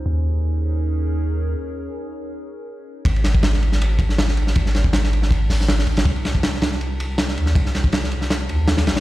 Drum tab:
RD |----------------|----------------|xxx-x-x-x-x-x-x-|x-x-x-x-x---x-xx|
HH |----------------|----------------|----------------|----------o-----|
SD |----------------|----------------|--o-oo-o---ooo-o|-oo-oo-o--oooo-o|
BD |----------------|----------------|o--o------o-----|o--o----o-------|

RD |xxx-x-x-x-x-x-x-|x-x-x-x-x-x-xxxx|
HH |----------------|----------------|
SD |--o-oooo----oo-o|-oo-oo-oo---oooo|
BD |o--o------------|o--o------------|